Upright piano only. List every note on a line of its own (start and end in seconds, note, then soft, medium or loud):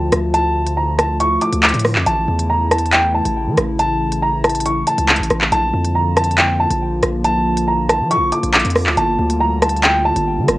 0.00 0.30 A5 medium
0.34 0.74 A5 loud
0.77 0.95 A#5 medium
0.99 1.16 A5 medium
1.20 1.38 C#6 loud
1.42 1.59 D6 medium
1.64 2.04 D6 medium
2.07 2.47 A5 loud
2.50 2.67 A#5 medium
2.71 2.89 A5 medium
2.93 3.10 G5 loud
3.15 3.75 A5 medium
3.79 4.20 A5 loud
4.22 4.40 A#5 medium
4.44 4.62 A5 medium
4.66 4.83 C#6 medium
4.87 5.48 A5 medium
5.52 5.92 A5 loud
5.95 6.13 A#5 medium
6.17 6.34 A5 medium
6.38 6.56 G5 medium
6.60 7.21 A5 medium
7.25 7.65 A5 loud
7.68 7.85 A#5 medium
7.89 8.07 A5 medium
8.11 8.28 C#6 loud
8.32 8.50 D6 medium
8.54 8.95 D6 medium
8.97 9.38 A5 medium
9.40 9.58 A#5 medium
9.62 9.80 A5 medium
9.83 10.01 G5 loud
10.05 10.58 A5 medium